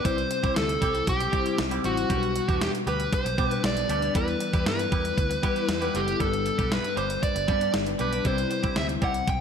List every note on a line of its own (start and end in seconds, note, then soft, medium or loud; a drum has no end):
0.04 0.24 C2 loud
0.04 0.78 C3 medium
0.04 0.78 G3 medium
0.04 0.20 G3 medium
0.04 0.78 C4 medium
0.04 0.17 C4 medium
0.04 0.78 E4 medium
0.04 0.17 E4 medium
0.04 0.16 G4 medium
0.04 0.78 C5 medium
0.04 0.53 C5 medium
0.04 kick medium
0.04 closed hi-hat medium
0.17 muted clean electric guitar stroke soft
0.17 closed hi-hat soft
0.30 muted clean electric guitar stroke soft
0.30 closed hi-hat medium
0.43 0.53 C2 medium
0.43 0.56 G3 medium
0.43 0.56 C4 medium
0.43 0.56 E4 medium
0.43 0.55 G4 medium
0.43 kick medium
0.43 closed hi-hat soft
0.56 0.76 D2 medium
0.56 1.09 A4 medium
0.56 snare medium
0.56 closed hi-hat medium
0.69 muted clean electric guitar stroke soft
0.69 closed hi-hat soft
0.81 1.01 C2 medium
0.81 0.97 G3 medium
0.81 0.94 C4 medium
0.81 0.93 E4 medium
0.81 0.93 G4 medium
0.81 kick medium
0.81 closed hi-hat medium
0.94 muted clean electric guitar stroke soft
0.94 closed hi-hat soft
1.07 1.27 B1 medium
1.07 1.56 G4 medium
1.07 muted clean electric guitar stroke soft
1.07 kick medium
1.07 closed hi-hat medium
1.20 muted clean electric guitar stroke soft
1.20 closed hi-hat medium
1.32 1.45 G3 medium
1.32 1.70 G3 medium
1.32 1.45 C4 medium
1.32 1.70 C4 medium
1.32 1.44 E4 medium
1.32 1.70 E4 medium
1.32 1.44 G4 medium
1.32 1.70 C5 medium
1.32 kick medium
1.32 closed hi-hat medium
1.45 1.57 G3 medium
1.45 1.57 C4 medium
1.45 1.58 E4 medium
1.45 1.58 G4 medium
1.45 closed hi-hat soft
1.58 1.78 C2 medium
1.58 muted clean electric guitar stroke soft
1.58 snare loud
1.58 closed hi-hat medium
1.71 1.82 G3 medium
1.71 1.83 C4 medium
1.71 1.83 E4 medium
1.71 1.84 G4 medium
1.71 closed hi-hat medium
1.83 2.04 A1 medium
1.83 2.02 G3 medium
1.83 1.96 G3 medium
1.83 2.02 C4 medium
1.83 1.96 C4 medium
1.83 2.03 E4 medium
1.83 1.96 E4 medium
1.83 2.62 F#4 medium
1.83 1.95 G4 medium
1.83 2.03 C5 medium
1.83 closed hi-hat medium
1.96 muted clean electric guitar stroke medium
1.96 closed hi-hat soft
2.09 2.39 B1 loud
2.09 2.83 B2 medium
2.09 2.25 G3 medium
2.09 2.83 G3 medium
2.09 2.83 B3 medium
2.09 2.22 B3 medium
2.09 2.84 D4 medium
2.09 2.22 D4 medium
2.09 2.21 G4 medium
2.09 2.16 A4 medium
2.09 kick medium
2.09 closed hi-hat medium
2.17 2.87 B4 medium
2.23 muted clean electric guitar stroke soft
2.23 closed hi-hat soft
2.35 muted clean electric guitar stroke soft
2.35 closed hi-hat medium
2.48 2.68 E2 medium
2.48 2.61 G3 soft
2.48 2.61 B3 soft
2.48 2.61 D4 medium
2.48 2.60 G4 medium
2.48 kick medium
2.48 closed hi-hat soft
2.61 2.69 G4 medium
2.61 snare loud
2.61 closed hi-hat medium
2.74 muted clean electric guitar stroke soft
2.74 closed hi-hat soft
2.87 3.06 D2 medium
2.87 3.02 G3 medium
2.87 3.00 B3 medium
2.87 2.99 D4 medium
2.87 2.98 G4 medium
2.87 3.14 B4 medium
2.87 closed hi-hat medium
3.00 muted clean electric guitar stroke soft
3.00 closed hi-hat soft
3.12 3.49 C5 loud
3.12 muted clean electric guitar stroke soft
3.12 kick medium
3.12 closed hi-hat medium
3.25 3.35 B1 medium
3.25 muted clean electric guitar stroke medium
3.25 closed hi-hat medium
3.38 3.57 B2 medium
3.38 3.75 G3 medium
3.38 3.51 G3 medium
3.38 3.75 B3 medium
3.38 3.50 B3 medium
3.38 3.75 D4 medium
3.38 3.50 D4 medium
3.38 3.49 G4 medium
3.38 3.75 B4 medium
3.38 kick medium
3.38 closed hi-hat medium
3.49 3.62 G3 medium
3.49 3.63 B3 medium
3.49 3.63 D4 medium
3.49 3.63 G4 medium
3.49 3.61 B4 loud
3.49 closed hi-hat soft
3.63 3.83 B1 medium
3.63 4.16 D5 loud
3.63 muted clean electric guitar stroke soft
3.63 snare loud
3.63 closed hi-hat medium
3.77 muted clean electric guitar stroke soft
3.77 closed hi-hat medium
3.89 4.08 D2 medium
3.89 4.08 G3 medium
3.89 4.02 G3 medium
3.89 4.08 B3 medium
3.89 4.02 B3 medium
3.89 4.08 D4 medium
3.89 4.02 D4 medium
3.89 4.01 G4 medium
3.89 4.08 B4 medium
3.89 closed hi-hat medium
4.02 4.13 G3 medium
4.02 4.14 B3 medium
4.02 4.15 D4 medium
4.02 4.15 G4 medium
4.02 closed hi-hat soft
4.14 4.34 E2 loud
4.14 4.88 E3 medium
4.14 4.88 G3 medium
4.14 4.30 G3 medium
4.14 4.88 B3 medium
4.14 4.28 B3 medium
4.14 4.88 E4 medium
4.14 4.27 E4 medium
4.14 4.27 G4 medium
4.14 4.89 B4 medium
4.14 4.64 B4 loud
4.14 kick medium
4.14 closed hi-hat medium
4.28 muted clean electric guitar stroke medium
4.28 closed hi-hat soft
4.40 muted clean electric guitar stroke soft
4.40 closed hi-hat medium
4.53 4.63 E2 medium
4.53 4.66 G3 soft
4.53 4.66 B3 soft
4.53 4.66 E4 medium
4.53 4.66 G4 medium
4.53 kick medium
4.53 closed hi-hat soft
4.66 4.85 G2 medium
4.66 5.99 B4 medium
4.66 snare loud
4.66 closed hi-hat medium
4.79 muted clean electric guitar stroke soft
4.79 closed hi-hat soft
4.92 5.11 E2 medium
4.92 5.07 G3 medium
4.92 5.05 B3 medium
4.92 5.04 E4 medium
4.92 5.03 G4 medium
4.92 kick medium
4.92 closed hi-hat medium
5.05 muted clean electric guitar stroke soft
5.05 closed hi-hat soft
5.18 5.37 D2 medium
5.18 muted clean electric guitar stroke soft
5.18 kick medium
5.18 closed hi-hat medium
5.30 muted clean electric guitar stroke medium
5.30 closed hi-hat medium
5.42 5.80 G3 medium
5.42 5.56 G3 medium
5.42 5.80 B3 medium
5.42 5.55 B3 medium
5.42 5.80 E4 medium
5.42 5.55 E4 medium
5.42 5.54 G4 medium
5.42 5.80 B4 medium
5.42 kick medium
5.42 closed hi-hat medium
5.56 5.68 G3 soft
5.56 5.68 B3 medium
5.56 5.68 E4 medium
5.56 5.68 G4 medium
5.56 closed hi-hat soft
5.68 5.88 E2 medium
5.68 snare loud
5.68 closed hi-hat loud
5.81 5.93 G3 medium
5.81 5.93 B3 medium
5.81 5.94 E4 medium
5.81 5.94 G4 medium
5.81 closed hi-hat medium
5.94 6.14 F#1 medium
5.94 6.13 G3 medium
5.94 6.07 G3 medium
5.94 6.13 B3 medium
5.94 6.07 B3 medium
5.94 6.13 E4 medium
5.94 6.06 E4 medium
5.94 6.06 G4 medium
5.94 6.21 G4 medium
5.94 6.13 A4 medium
5.94 closed hi-hat medium
6.07 muted clean electric guitar stroke soft
6.07 closed hi-hat soft
6.19 6.49 G1 loud
6.19 6.93 G2 medium
6.19 6.35 G3 medium
6.19 6.93 G3 medium
6.19 6.33 B3 medium
6.19 6.94 B3 medium
6.19 6.32 D4 medium
6.19 6.94 D4 medium
6.19 6.32 G4 medium
6.19 6.74 A4 medium
6.19 6.27 A#4 medium
6.19 kick medium
6.19 closed hi-hat medium
6.27 6.97 B4 medium
6.33 muted clean electric guitar stroke soft
6.33 closed hi-hat soft
6.45 muted clean electric guitar stroke soft
6.45 closed hi-hat medium
6.58 6.78 B1 medium
6.58 6.71 G3 soft
6.58 6.71 B3 soft
6.58 6.71 D4 medium
6.58 6.71 G4 medium
6.58 kick medium
6.58 closed hi-hat soft
6.72 6.96 B4 medium
6.72 snare loud
6.72 closed hi-hat medium
6.84 muted clean electric guitar stroke soft
6.84 closed hi-hat soft
6.96 7.16 G1 medium
6.96 7.12 G3 medium
6.96 7.09 B3 medium
6.96 7.09 D4 medium
6.96 7.08 G4 medium
6.96 7.23 C5 medium
6.96 closed hi-hat medium
7.09 muted clean electric guitar stroke soft
7.09 closed hi-hat medium
7.23 7.71 D5 medium
7.23 muted clean electric guitar stroke soft
7.23 kick medium
7.23 closed hi-hat medium
7.35 7.50 G1 medium
7.35 muted clean electric guitar stroke soft
7.35 closed hi-hat medium
7.48 7.68 G2 medium
7.48 7.61 G3 medium
7.48 7.85 G3 medium
7.48 7.60 B3 medium
7.48 7.85 B3 medium
7.48 7.85 D4 medium
7.48 7.60 D4 medium
7.48 7.59 G4 medium
7.48 7.86 B4 medium
7.48 kick medium
7.48 closed hi-hat medium
7.60 7.73 G3 soft
7.60 7.73 B3 soft
7.60 7.73 D4 medium
7.60 7.73 G4 medium
7.60 closed hi-hat soft
7.74 7.93 G1 medium
7.74 muted clean electric guitar stroke soft
7.74 snare loud
7.74 closed hi-hat medium
7.86 muted clean electric guitar stroke soft
7.86 closed hi-hat soft
7.99 8.19 B1 medium
7.99 8.12 G3 medium
7.99 8.18 G3 medium
7.99 8.11 B3 medium
7.99 8.18 B3 medium
7.99 8.11 D4 medium
7.99 8.18 D4 medium
7.99 8.11 G4 medium
7.99 8.18 B4 medium
7.99 8.27 B4 medium
7.99 closed hi-hat medium
8.12 8.23 G3 soft
8.12 8.24 B3 medium
8.12 8.24 D4 medium
8.12 8.24 G4 medium
8.12 closed hi-hat soft
8.24 8.44 C2 loud
8.24 8.98 C3 medium
8.24 8.40 G3 medium
8.24 8.98 G3 medium
8.24 8.37 C4 medium
8.24 8.99 C4 medium
8.24 8.36 E4 medium
8.24 8.99 E4 medium
8.24 8.36 G4 medium
8.24 8.99 C5 medium
8.24 8.78 C5 medium
8.24 kick medium
8.24 closed hi-hat medium
8.37 muted clean electric guitar stroke soft
8.37 closed hi-hat soft
8.50 muted clean electric guitar stroke soft
8.50 closed hi-hat medium
8.63 8.73 C2 medium
8.63 8.76 G3 soft
8.63 8.76 C4 soft
8.63 8.76 E4 medium
8.63 8.75 G4 medium
8.63 kick medium
8.63 closed hi-hat soft
8.76 8.96 D2 medium
8.76 8.85 E5 medium
8.76 snare loud
8.76 closed hi-hat medium
8.89 muted clean electric guitar stroke soft
8.89 closed hi-hat soft
9.02 9.21 C2 medium
9.02 9.18 G3 medium
9.02 9.14 C4 medium
9.02 9.14 E4 medium
9.02 9.13 G4 medium
9.02 9.29 F#5 medium
9.02 kick medium
9.02 closed hi-hat medium
9.14 muted clean electric guitar stroke soft
9.14 closed hi-hat soft
9.27 9.41 B1 medium
9.27 9.41 G5 loud
9.27 muted clean electric guitar stroke soft
9.27 kick medium
9.27 closed hi-hat medium